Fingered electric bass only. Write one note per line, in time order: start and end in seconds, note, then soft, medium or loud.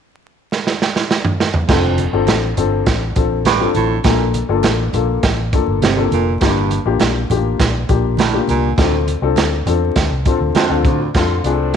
1.69 2.05 F1 medium
2.13 2.25 G1 medium
2.28 2.52 A1 medium
2.57 2.81 G1 medium
2.86 3.11 A1 medium
3.16 3.64 A1 medium
3.75 3.99 A1 medium
4.05 4.41 A#1 loud
4.49 4.61 G1 medium
4.63 4.88 A1 medium
4.93 5.18 A#1 medium
5.23 5.59 A1 medium
5.67 5.79 G1 medium
5.83 6.06 G1 medium
6.12 6.36 F1 medium
6.42 6.78 G1 loud
6.86 6.98 A1 medium
7.00 7.24 A#1 medium
7.30 7.54 A1 medium
7.60 7.84 A#1 medium
7.89 8.37 A#1 medium
8.49 8.72 C2 medium
8.78 9.14 D2 medium
9.22 9.34 C2 medium
9.37 9.61 D2 medium
9.67 9.91 E2 medium
9.96 10.08 D2 medium
10.11 10.23 C2 medium
10.40 10.52 D2 medium
10.70 10.86 D2 medium
10.85 11.09 D3 medium
11.15 11.39 F2 medium
11.44 11.76 C2 medium